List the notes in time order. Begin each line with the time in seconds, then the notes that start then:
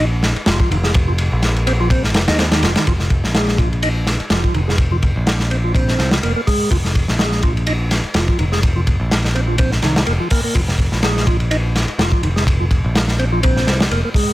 Already playing: A#1
0.23 snare, ride
0.36 muted picked electric bass stroke, ride
0.46 F1 F3, snare, ride
0.60 F3, kick
0.71 F1 D#3, ride
0.83 G#3, snare
0.94 kick, ride
1.08 F3
1.18 ride
1.32 A#1
1.42 snare, ride
1.56 ride
1.67 C4, ride
1.80 F3
1.90 C4, kick, ride
2.04 snare
2.14 F1, snare, ride
2.28 D#2 D#4, snare, ride
2.39 C4, snare, ride
2.52 D#3, snare, ride
2.63 F1 F3, snare, ride
2.76 D#3, snare, ride
2.87 F1 F3, kick, ride
2.99 snare
3.10 kick, ride
3.24 A#1, snare
3.35 G#3, snare, ride
3.48 snare
3.58 F3, kick, ride
3.73 ride
3.83 D#4, ride
4.07 snare, ride
4.20 muted picked electric bass stroke, ride
4.30 F1 F3, snare, ride
4.43 F3, kick
4.54 F1 D#3, ride
4.68 G#3, snare
4.78 kick, ride
4.92 F3
5.02 kick, ride
5.16 A#1
5.27 snare, ride
5.39 snare
5.51 C4, ride
5.64 F3
5.75 C4, kick, ride
5.88 snare
5.99 C2, snare, ride
6.11 F3, snare
6.23 F1 A#3, ride
6.36 A#3
6.47 G#3, kick, open hi-hat
6.71 F1 F3, kick, ride
6.85 snare
6.95 kick, ride
7.08 A#1, snare
7.19 G#3, snare, ride
7.32 snare
7.42 F3, kick, ride
7.57 ride
7.67 D#4, ride
7.91 snare, ride
8.04 muted picked electric bass stroke, ride
8.14 F1 F3, snare, ride
8.28 F3, kick
8.39 F1 D#3, ride
8.52 G#3, snare
8.63 kick, ride
8.76 F3
8.87 kick, ride
9.00 A#1
9.11 snare, ride
9.24 snare
9.35 C4, ride
9.48 F3
9.58 C4, kick, ride
9.72 snare
9.82 C2 D#3, snare, ride
9.96 D#3, snare
10.07 F1 A#3, ride
10.20 F3
10.30 A#3, kick, open hi-hat
10.44 A#3
10.55 F1 F3, kick, ride
10.68 snare
10.78 kick, ride
10.92 A#1, snare
11.03 G#3, snare, ride
11.17 snare
11.27 F3, kick, ride
11.40 ride
11.51 D#4, ride
11.75 snare, ride
11.88 muted picked electric bass stroke, ride
11.99 F1 F3, snare, ride
12.12 F3, kick
12.23 F1 D#3, ride
12.36 G#3, snare
12.47 kick, ride
12.60 F3
12.71 kick, ride
12.84 A#1
12.95 snare, ride
13.08 snare
13.19 C4, ride
13.32 F3
13.43 C4, kick, ride
13.56 snare
13.67 C2, snare, ride
13.80 F3, snare
13.91 F1 A#3, ride
14.05 A#3
14.14 G#3, kick, open hi-hat